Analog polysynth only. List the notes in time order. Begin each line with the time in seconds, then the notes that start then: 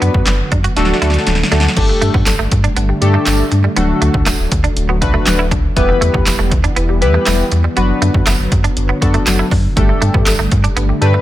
Already playing: B3 D4 F#4 B4
0.76 A3 D4 F#4 A4
1.01 A3 D4 F#4 A4
1.51 A3 D4 F#4 A4
1.76 A3 D4 G4 A4
3.01 A3 D4 G4 A4
3.76 A3 D4 F#4 A4
5.01 A3 D4 F#4 B4
5.76 B3 E4 G4 B4
7.01 B3 E4 G4 B4
7.76 B3 D4 F#4 B4
9.01 B3 D4 F#4 A4
9.76 A3 D4 G4 A4
11.01 A3 D4 G4 B4